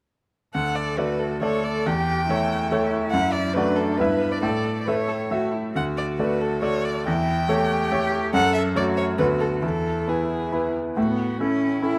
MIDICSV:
0, 0, Header, 1, 4, 480
1, 0, Start_track
1, 0, Key_signature, 2, "major"
1, 0, Tempo, 429492
1, 615, Time_signature, 3, 2, 24, 8
1, 4454, Tempo, 440852
1, 7814, Tempo, 422238
1, 9257, Key_signature, 3, "major"
1, 10214, Tempo, 446429
1, 12134, Tempo, 426439
1, 13281, End_track
2, 0, Start_track
2, 0, Title_t, "Violin"
2, 0, Program_c, 0, 40
2, 604, Note_on_c, 0, 78, 62
2, 840, Note_on_c, 0, 74, 53
2, 856, Note_off_c, 0, 78, 0
2, 1093, Note_on_c, 0, 71, 57
2, 1110, Note_off_c, 0, 74, 0
2, 1329, Note_on_c, 0, 69, 49
2, 1346, Note_off_c, 0, 71, 0
2, 1577, Note_off_c, 0, 69, 0
2, 1587, Note_on_c, 0, 73, 62
2, 1836, Note_on_c, 0, 74, 56
2, 1853, Note_off_c, 0, 73, 0
2, 2083, Note_on_c, 0, 79, 67
2, 2100, Note_off_c, 0, 74, 0
2, 3257, Note_off_c, 0, 79, 0
2, 3475, Note_on_c, 0, 78, 77
2, 3714, Note_on_c, 0, 74, 69
2, 3730, Note_off_c, 0, 78, 0
2, 3950, Note_on_c, 0, 71, 73
2, 3967, Note_off_c, 0, 74, 0
2, 4202, Note_on_c, 0, 69, 60
2, 4219, Note_off_c, 0, 71, 0
2, 4437, Note_on_c, 0, 71, 56
2, 4454, Note_off_c, 0, 69, 0
2, 4815, Note_on_c, 0, 74, 58
2, 4832, Note_off_c, 0, 71, 0
2, 4927, Note_off_c, 0, 74, 0
2, 4933, Note_on_c, 0, 74, 51
2, 5328, Note_off_c, 0, 74, 0
2, 5344, Note_on_c, 0, 74, 32
2, 5415, Note_on_c, 0, 73, 41
2, 5431, Note_off_c, 0, 74, 0
2, 5895, Note_off_c, 0, 73, 0
2, 6389, Note_on_c, 0, 78, 62
2, 6476, Note_off_c, 0, 78, 0
2, 6619, Note_on_c, 0, 74, 59
2, 6706, Note_off_c, 0, 74, 0
2, 6850, Note_on_c, 0, 71, 57
2, 7095, Note_on_c, 0, 69, 51
2, 7111, Note_off_c, 0, 71, 0
2, 7319, Note_off_c, 0, 69, 0
2, 7325, Note_on_c, 0, 73, 63
2, 7569, Note_on_c, 0, 74, 59
2, 7586, Note_off_c, 0, 73, 0
2, 7809, Note_off_c, 0, 74, 0
2, 7815, Note_on_c, 0, 79, 70
2, 8996, Note_off_c, 0, 79, 0
2, 9256, Note_on_c, 0, 78, 84
2, 9477, Note_off_c, 0, 78, 0
2, 9483, Note_on_c, 0, 76, 70
2, 9574, Note_off_c, 0, 76, 0
2, 9739, Note_on_c, 0, 74, 67
2, 9830, Note_off_c, 0, 74, 0
2, 9971, Note_on_c, 0, 73, 65
2, 10062, Note_off_c, 0, 73, 0
2, 10214, Note_on_c, 0, 71, 63
2, 10300, Note_off_c, 0, 71, 0
2, 10451, Note_on_c, 0, 69, 55
2, 10537, Note_off_c, 0, 69, 0
2, 10705, Note_on_c, 0, 69, 55
2, 11182, Note_on_c, 0, 68, 42
2, 11198, Note_off_c, 0, 69, 0
2, 11899, Note_off_c, 0, 68, 0
2, 12137, Note_on_c, 0, 66, 40
2, 12640, Note_on_c, 0, 64, 35
2, 12657, Note_off_c, 0, 66, 0
2, 13281, Note_off_c, 0, 64, 0
2, 13281, End_track
3, 0, Start_track
3, 0, Title_t, "Cello"
3, 0, Program_c, 1, 42
3, 610, Note_on_c, 1, 69, 49
3, 1091, Note_on_c, 1, 66, 47
3, 1108, Note_off_c, 1, 69, 0
3, 1578, Note_off_c, 1, 66, 0
3, 1588, Note_on_c, 1, 69, 49
3, 2082, Note_on_c, 1, 67, 57
3, 2099, Note_off_c, 1, 69, 0
3, 2538, Note_off_c, 1, 67, 0
3, 2544, Note_on_c, 1, 64, 59
3, 3967, Note_on_c, 1, 62, 51
3, 3984, Note_off_c, 1, 64, 0
3, 4455, Note_on_c, 1, 71, 57
3, 4471, Note_off_c, 1, 62, 0
3, 4913, Note_off_c, 1, 71, 0
3, 4920, Note_on_c, 1, 69, 46
3, 5350, Note_off_c, 1, 69, 0
3, 5397, Note_on_c, 1, 71, 59
3, 5484, Note_off_c, 1, 71, 0
3, 5642, Note_on_c, 1, 69, 44
3, 5729, Note_off_c, 1, 69, 0
3, 5887, Note_on_c, 1, 66, 52
3, 6124, Note_on_c, 1, 64, 41
3, 6140, Note_off_c, 1, 66, 0
3, 6364, Note_off_c, 1, 64, 0
3, 6370, Note_on_c, 1, 66, 50
3, 7768, Note_off_c, 1, 66, 0
3, 7811, Note_on_c, 1, 64, 51
3, 8288, Note_off_c, 1, 64, 0
3, 8302, Note_on_c, 1, 67, 66
3, 9239, Note_off_c, 1, 67, 0
3, 9262, Note_on_c, 1, 69, 59
3, 9724, Note_off_c, 1, 69, 0
3, 9745, Note_on_c, 1, 66, 54
3, 10213, Note_off_c, 1, 66, 0
3, 10225, Note_on_c, 1, 66, 51
3, 10692, Note_on_c, 1, 64, 43
3, 10708, Note_off_c, 1, 66, 0
3, 11897, Note_off_c, 1, 64, 0
3, 12129, Note_on_c, 1, 57, 57
3, 12246, Note_off_c, 1, 57, 0
3, 12261, Note_on_c, 1, 59, 50
3, 12617, Note_off_c, 1, 59, 0
3, 12622, Note_on_c, 1, 61, 59
3, 13089, Note_off_c, 1, 61, 0
3, 13097, Note_on_c, 1, 64, 57
3, 13281, Note_off_c, 1, 64, 0
3, 13281, End_track
4, 0, Start_track
4, 0, Title_t, "Grand piano"
4, 0, Program_c, 2, 0
4, 609, Note_on_c, 2, 38, 41
4, 786, Control_c, 2, 64, 127
4, 1081, Note_off_c, 2, 38, 0
4, 1098, Note_on_c, 2, 57, 30
4, 1102, Note_on_c, 2, 69, 35
4, 1108, Note_on_c, 2, 74, 37
4, 1537, Note_off_c, 2, 57, 0
4, 1539, Note_off_c, 2, 69, 0
4, 1542, Note_off_c, 2, 74, 0
4, 1581, Note_on_c, 2, 57, 32
4, 1591, Note_on_c, 2, 69, 34
4, 1595, Note_on_c, 2, 74, 36
4, 2036, Note_off_c, 2, 57, 0
4, 2041, Note_off_c, 2, 69, 0
4, 2043, Note_off_c, 2, 74, 0
4, 2080, Note_on_c, 2, 40, 48
4, 2104, Control_c, 2, 64, 0
4, 2301, Control_c, 2, 64, 127
4, 2539, Note_off_c, 2, 40, 0
4, 2566, Note_on_c, 2, 57, 39
4, 2571, Note_on_c, 2, 69, 39
4, 2571, Note_on_c, 2, 73, 38
4, 2981, Note_off_c, 2, 57, 0
4, 2984, Note_off_c, 2, 69, 0
4, 2984, Note_off_c, 2, 73, 0
4, 3032, Note_on_c, 2, 57, 36
4, 3039, Note_on_c, 2, 69, 42
4, 3043, Note_on_c, 2, 73, 41
4, 3454, Note_off_c, 2, 57, 0
4, 3457, Note_off_c, 2, 69, 0
4, 3459, Note_off_c, 2, 73, 0
4, 3502, Note_on_c, 2, 42, 49
4, 3515, Control_c, 2, 64, 0
4, 3671, Control_c, 2, 64, 127
4, 3961, Note_off_c, 2, 42, 0
4, 3981, Note_on_c, 2, 57, 39
4, 3992, Note_on_c, 2, 74, 44
4, 3993, Note_on_c, 2, 66, 39
4, 4416, Note_off_c, 2, 57, 0
4, 4421, Note_off_c, 2, 74, 0
4, 4422, Note_off_c, 2, 66, 0
4, 4465, Note_on_c, 2, 43, 44
4, 4468, Note_on_c, 2, 59, 35
4, 4477, Control_c, 2, 64, 0
4, 4477, Note_on_c, 2, 64, 35
4, 4481, Note_on_c, 2, 76, 36
4, 4664, Control_c, 2, 64, 127
4, 4894, Note_off_c, 2, 59, 0
4, 4898, Note_off_c, 2, 64, 0
4, 4900, Note_off_c, 2, 76, 0
4, 4922, Note_off_c, 2, 43, 0
4, 4936, Note_on_c, 2, 45, 48
4, 4953, Control_c, 2, 64, 0
4, 5119, Control_c, 2, 64, 127
4, 5401, Note_off_c, 2, 45, 0
4, 5425, Note_on_c, 2, 57, 34
4, 5429, Note_on_c, 2, 69, 33
4, 5436, Note_on_c, 2, 76, 37
4, 5856, Note_off_c, 2, 57, 0
4, 5858, Note_off_c, 2, 69, 0
4, 5862, Note_off_c, 2, 76, 0
4, 5896, Note_on_c, 2, 57, 32
4, 5902, Note_on_c, 2, 69, 31
4, 5908, Note_on_c, 2, 76, 32
4, 6333, Note_off_c, 2, 57, 0
4, 6336, Note_off_c, 2, 69, 0
4, 6339, Note_off_c, 2, 76, 0
4, 6380, Note_on_c, 2, 38, 42
4, 6397, Control_c, 2, 64, 0
4, 6584, Control_c, 2, 64, 127
4, 6840, Note_off_c, 2, 38, 0
4, 6858, Note_on_c, 2, 57, 33
4, 6862, Note_on_c, 2, 69, 31
4, 6867, Note_on_c, 2, 74, 36
4, 7286, Note_off_c, 2, 57, 0
4, 7288, Note_off_c, 2, 69, 0
4, 7290, Note_off_c, 2, 74, 0
4, 7324, Note_on_c, 2, 57, 35
4, 7326, Note_on_c, 2, 69, 36
4, 7333, Note_on_c, 2, 74, 38
4, 7770, Note_off_c, 2, 57, 0
4, 7771, Note_off_c, 2, 69, 0
4, 7774, Note_off_c, 2, 74, 0
4, 7808, Note_on_c, 2, 40, 52
4, 7838, Control_c, 2, 64, 0
4, 8013, Control_c, 2, 64, 127
4, 8282, Note_off_c, 2, 40, 0
4, 8287, Note_on_c, 2, 57, 43
4, 8291, Note_on_c, 2, 69, 43
4, 8297, Note_on_c, 2, 73, 43
4, 8728, Note_off_c, 2, 57, 0
4, 8730, Note_off_c, 2, 69, 0
4, 8733, Note_off_c, 2, 73, 0
4, 8774, Note_on_c, 2, 57, 42
4, 8777, Note_on_c, 2, 69, 40
4, 8782, Note_on_c, 2, 73, 43
4, 9209, Note_off_c, 2, 57, 0
4, 9211, Note_off_c, 2, 69, 0
4, 9213, Note_off_c, 2, 73, 0
4, 9250, Note_on_c, 2, 42, 56
4, 9280, Control_c, 2, 64, 0
4, 9481, Control_c, 2, 64, 127
4, 9713, Note_off_c, 2, 42, 0
4, 9730, Note_on_c, 2, 57, 40
4, 9731, Note_on_c, 2, 69, 40
4, 9735, Note_on_c, 2, 73, 45
4, 10169, Note_off_c, 2, 57, 0
4, 10169, Note_off_c, 2, 69, 0
4, 10172, Note_off_c, 2, 73, 0
4, 10211, Note_on_c, 2, 59, 33
4, 10213, Note_on_c, 2, 38, 47
4, 10221, Note_on_c, 2, 69, 32
4, 10229, Note_on_c, 2, 71, 33
4, 10237, Control_c, 2, 64, 0
4, 10392, Control_c, 2, 64, 127
4, 10646, Note_off_c, 2, 59, 0
4, 10651, Note_off_c, 2, 69, 0
4, 10654, Note_off_c, 2, 71, 0
4, 10675, Note_off_c, 2, 38, 0
4, 10688, Note_on_c, 2, 40, 37
4, 10714, Control_c, 2, 64, 0
4, 10931, Control_c, 2, 64, 127
4, 11159, Note_off_c, 2, 40, 0
4, 11174, Note_on_c, 2, 59, 26
4, 11181, Note_on_c, 2, 64, 28
4, 11187, Note_on_c, 2, 71, 32
4, 11612, Note_off_c, 2, 59, 0
4, 11616, Note_off_c, 2, 64, 0
4, 11619, Note_off_c, 2, 71, 0
4, 11657, Note_on_c, 2, 59, 24
4, 11657, Note_on_c, 2, 64, 28
4, 11663, Note_on_c, 2, 71, 28
4, 12092, Note_off_c, 2, 59, 0
4, 12092, Note_off_c, 2, 64, 0
4, 12095, Note_off_c, 2, 71, 0
4, 12135, Note_on_c, 2, 45, 39
4, 12156, Control_c, 2, 64, 0
4, 12327, Control_c, 2, 64, 127
4, 12609, Note_off_c, 2, 45, 0
4, 12622, Note_on_c, 2, 61, 30
4, 12628, Note_on_c, 2, 64, 30
4, 12631, Note_on_c, 2, 69, 31
4, 13053, Note_off_c, 2, 61, 0
4, 13056, Note_off_c, 2, 64, 0
4, 13058, Note_off_c, 2, 69, 0
4, 13097, Note_on_c, 2, 64, 30
4, 13099, Note_on_c, 2, 61, 31
4, 13108, Note_on_c, 2, 69, 29
4, 13281, Note_off_c, 2, 61, 0
4, 13281, Note_off_c, 2, 64, 0
4, 13281, Note_off_c, 2, 69, 0
4, 13281, End_track
0, 0, End_of_file